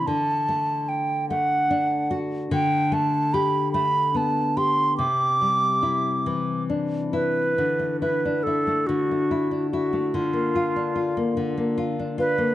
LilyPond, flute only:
\new Staff \with { instrumentName = "Flute" } { \time 6/8 \key c \lydian \tempo 4. = 48 a''4 g''8 fis''4 r8 | g''8 a''8 b''8 b''8 a''8 c'''8 | d'''2 r8 b'8~ | b'8 b'8 a'8 fis'4 fis'8 |
f'2 r8 b'8 | }